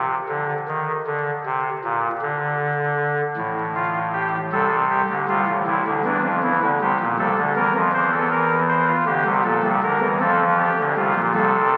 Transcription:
pipe organ
Already playing: C3
0.29 D3
0.68 D#3
1.07 D3
1.46 C3
1.84 A#2
2.22 D3
3.37 A1 A2
3.75 F4
4.13 G4
4.52 C2 C3 A4
4.90 G4
5.09 D2 D3
5.28 C2 C3 F4
5.47 A1 A2
5.67 C2 C3 E4
5.85 D2 D3
6.05 E2 E3 D4
6.23 F2 F3
6.43 E2 E3 E4
6.62 D2 D3
6.81 C2 C3 G4
7.00 A#1 A#2
7.19 C2 C3 A4
7.38 D2 D3
7.56 E2 E3 A#4
7.74 F2 F3
7.94 E2 E3 C5
8.12 A4
8.31 A#4
8.69 C5
8.88 F4
9.06 D2 D3 G4
9.25 C2 C3
9.44 A#1 A#2 A4
9.63 C2 C3
9.83 D2 D3 A#4
10.01 E2 E3
10.20 F2 F3 A4
10.58 G4
10.78 D2 D3
10.97 C2 C3 F4
11.16 A#1 A#2
11.35 C2 C3 A4

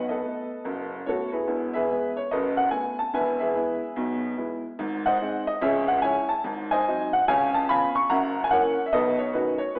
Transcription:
upright piano
Already playing: B1 B2
0.09 A4 B4 D#5
0.24 A3 B3
0.65 F#1 F#2
1.06 A3 B3 F#4 A4 C#5
1.32 E4 G#4 B4
1.47 E1 E2
1.74 G#4 B4 E5
1.90 G#3 B3
2.17 C#5
2.31 F#1 F#2 A4 B4 D#5
2.57 F#5
2.71 A3 B3 G#5
2.99 A5
3.14 E1 E2 B4 E5 G#5
3.39 G#4 B4 E5
3.55 G#3 B3 E4
3.96 B1 B2
4.37 G#3 B3 E4
4.79 G#1 G#2
5.06 C5 D#5 F#5
5.22 G#3 C4 D#4
5.47 D#5
5.61 C#2 C#3 G#4 C#5 E5
5.88 F#5
6.02 G#3 C#4 E4 C#5 E5 G#5
6.29 A5
6.44 G#1 G#2
6.71 C5 D#5 G#5
6.88 F#3 C4 D#4
7.13 F#5
7.28 C#2 C#3 C#5 F5 G#5
7.54 A5
7.69 F3 B3 C#4 F5 G#5 B5
7.95 C#6
8.10 F#1 F#2 E5 F#5 A#5
8.44 G#5
8.51 E3 A#3 C#4 A#4 C#5 F#5
8.86 E5
8.93 B1 B2 A4 B4 D#5
9.18 C#5
9.33 D#3 A3 C#4 D#4 F#4 B4
9.58 C#5
9.75 B1 B2 E4 B4

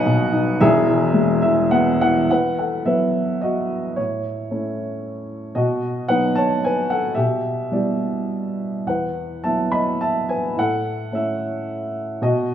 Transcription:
upright piano
Already playing: B1 B2 F#3 D#4 F#4 B4 D#5 F#5 G#5
0.06 B2
0.32 D#4
0.61 E1 E2 G#4 E5
0.87 E3
1.14 G#3
1.42 E3 E5
1.71 B3 F#5
2.01 E3 F#5
2.29 E2 B4 F#5
2.59 A4 F#5
2.85 F#3 B3 E4 B4 E5
3.41 F#4 D#5
3.96 A2 E4 C#5
4.51 A3 C#4 E4
5.55 B2 F#4 D#5
6.08 F#3 B3 D#4 B4 F#5
6.35 C#5 A5
6.64 B4 G#5
6.90 A4 F#5
7.14 B2 G4 E5
7.72 G3 B3 E4 G4 D5
8.87 E2 B4 F#5
9.44 F#3 B3 E4 E5 A5
9.72 D#5 B5
10.01 E5 A5
10.29 B4 G#5
10.56 A2 A4 F#5
11.12 A3 C#4 E4 E5
11.17 A4
12.22 B2 F#4 D#5

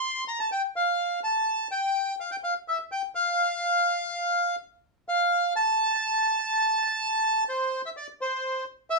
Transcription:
bandoneon
Already playing: C6
0.28 A#5
0.40 A5
0.52 G5
0.76 F5
1.24 A5
1.72 G5
2.20 F5
2.31 G5
2.44 F5
2.68 E5
2.92 G5
3.15 F5
5.09 F5
5.56 A5
7.49 C5
7.86 E5
7.97 D5
8.21 C5
8.90 E5

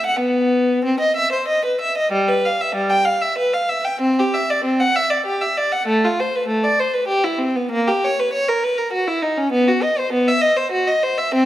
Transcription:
violin
0.06 F#5
0.19 B3
0.85 C4
1.00 D#5
1.17 E5
1.32 C5
1.48 D#5
1.65 B4
1.81 E5
1.98 D#5
2.12 G3
2.28 B4
2.45 F5
2.61 E5
2.75 G3
2.90 G5
3.05 F5
3.21 E5
3.38 B4
3.53 F5
3.69 E5
3.85 G5
4.01 C4
4.19 G4
4.34 E5
4.50 D5
4.64 C4
4.80 F#5
4.96 E5
5.10 D5
5.26 G4
5.41 E5
5.57 D5
5.72 F#5
5.88 A3
6.05 F4
6.20 C5
6.36 B4
6.48 A3
6.64 D5
6.79 C5
6.94 B4
7.08 G4
7.24 E4
7.38 C4
7.56 B3
7.71 A#3
7.88 G4
8.04 C#5
8.19 B4
8.33 C#5
8.48 A#4
8.64 B4
8.78 A#4
8.93 F#4
9.08 E4
9.22 D#4
9.37 C#4
9.52 B3
9.68 F#4
9.83 D#5
9.99 C5
10.13 B3
10.28 E5
10.41 D#5
10.57 C5
10.71 F#4
10.87 D#5
11.03 C5
11.18 E5
11.34 C4

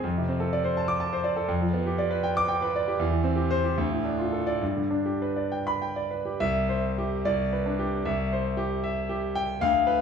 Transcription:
grand piano
0.04 F2
0.18 C3
0.28 C4
0.40 A4
0.53 D5
0.64 C5
0.77 A5
0.88 D6
1.00 A5
1.13 C5
1.24 D5
1.36 A4
1.48 F2
1.61 F3
1.73 B3
1.86 G4
1.98 D5
2.11 B4
2.23 G5
2.37 D6
2.48 G5
2.62 B4
2.76 D5
2.88 G4
2.99 E2
3.11 E3
3.24 C4
3.36 G4
3.50 C5
3.64 G4
3.78 D2
3.92 A2
4.05 D4
4.18 F4
4.32 A4
4.47 D5
4.61 G2
4.76 D3
4.90 D4
5.06 G4
5.22 B4
5.36 D5
5.52 G5
5.67 B5
5.82 G5
5.96 D5
6.11 B4
6.25 G4
6.40 C2 E5
6.69 C5
6.98 G4
7.25 C2 D5
7.53 B4
7.66 D4
7.79 G4
8.05 C2 E5
8.32 C5
8.57 G4
8.84 E5
9.09 G4
9.35 G5
9.61 D2 F5
9.87 B4

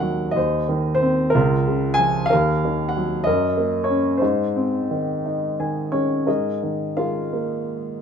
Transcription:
grand piano
Already playing: D#2 D#3 F#4 A#4
0.00 F#3 F#5
0.31 D#5
0.36 D#2 C5
0.69 D#3
0.95 C5
1.02 C4
1.30 A#4
1.35 C#2 F4
1.67 C#3
1.94 G#5
1.99 F3
2.26 F5
2.30 D#2 A#4
2.65 D#3
2.89 F#5
2.97 F#3
3.24 F#2 A#4 D#5
3.58 A#3
3.84 C#5
3.90 C#4
4.18 D#4 C5
4.22 G#2
4.56 C4
4.91 D#3
5.25 D#4
5.60 D#3 G#5
5.92 G#3 C#4 C#5
6.27 G#2 D#4 G#4 A#4 D#5
6.63 D#3
6.97 G#3 F4 A#4 F5
7.33 A#3

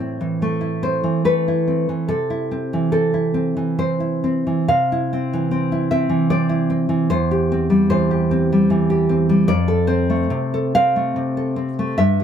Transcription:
nylon-string guitar
Already playing: A2 E4 D5
0.00 C4
0.21 E3
0.42 A3
0.61 E4
0.83 C4 C5
1.04 E3
1.25 A3 B4
1.48 E4
1.68 C4
1.89 E3
2.08 C3 A4
2.30 E4
2.51 C4
2.73 E3
2.92 C4 A4
3.14 E4
3.34 C4
3.57 E3
3.79 C4 C5
4.00 E4
4.24 C4
4.47 E3
4.68 C3 F5
4.92 E4
5.13 C4
5.33 E3
5.51 C4
5.72 E4
5.91 C4 E5
6.09 E3
6.30 C4 D5
6.49 E4
6.70 C4
6.89 E3
7.10 E2 C5
7.31 G4
7.52 C4
7.70 G3
7.90 E3 C5
8.11 G4
8.31 C4
8.52 G3
8.70 E3
8.90 G4
9.09 C4
9.29 G3
9.48 F2 D5
9.68 A4
9.87 C4 C5
10.10 A3
10.30 C3
10.54 A4
10.75 C4 F5
10.96 A3
11.16 C3
11.37 A4
11.56 C4
11.79 A3
11.98 G2 E5
12.20 G3

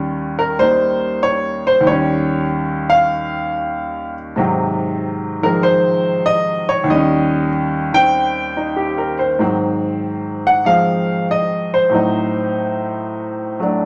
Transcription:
grand piano
Already playing: D#2 D#3 G3 C#4
0.39 A#4
0.59 G3 A#3 D#4 C5
1.23 C#5
1.67 C5
1.80 D#2
1.85 D#3 G3 C#5
1.92 C#4
2.90 F5
4.36 G#2 C3 D#3 F#3
5.42 D#3 F3 G#3 A#4
5.63 C5
6.26 D#5
6.69 C#5
6.84 D#2 D#3
6.90 G3 D#5
6.94 C#4
7.92 D#3 C4 G5
8.57 D#4
8.76 G4
8.98 A#4
9.19 C5
9.39 G#2 D#3 F#3 C4
10.47 F#5
10.65 F3 G#3 C4 F5
11.31 D#5
11.74 C5
11.90 A2 F#3 C4
11.95 D#4
13.60 F#3 A3 D4

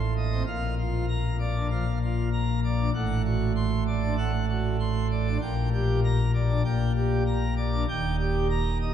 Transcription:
pipe organ
Already playing: A1 A2 C6
0.17 D#5
0.32 C4
0.47 A#1 A#2 F5
0.78 F4
1.08 A#5
1.40 D5
1.56 D4
1.71 F3 F5
2.02 F4
2.33 A#5
2.64 D5
2.79 D4
2.95 A1 A2 F#5
3.25 F#4
3.56 C6
3.87 D5
4.02 D4
4.17 A3 F#5
4.50 F#4
4.80 C6
5.11 D5
5.28 D4
5.42 A#1 A#2 G5
5.73 G4
6.04 A#5
6.34 D5
6.49 D4
6.65 A#1 A#2 G5
6.96 G4
7.27 A#5
7.57 D5
7.73 D4
7.89 D#1 D#2 G5
8.20 G4
8.50 A#5
8.81 D#5

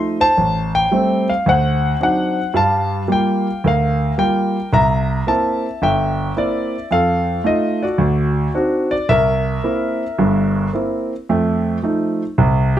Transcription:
grand piano
Already playing: F3 A3 D#4 D#5 C6
0.20 C5 A5
0.37 A1
0.75 G5
0.92 G3 A3 C4
1.29 F5
1.46 D2 C5 F#5
2.00 F#3 C4 D4 D#4 F#5
2.54 G2 G3 F5 A5
3.08 G3 A#3 F4
3.12 G5
3.64 D2 A#4 F5
4.18 G3 A#3 F4 G5
4.73 C2 E5 A#5
5.27 A#3 C4 E4 A5
5.82 G1 E5 G5
6.37 A#3 C4 E4 D5
6.91 F2 A4 F5
7.44 A3 D#4 F4 D#5
7.83 F#4 D5
7.98 D2
8.54 C4 D4 D#4 F#4
8.91 D5
9.09 C2 A#4 E5
9.64 A#3 C4 E4
10.18 G1 G2
10.73 A#3 C4 E4
11.29 F2 A3
11.83 F3 A3 D#4
12.38 C2 C3

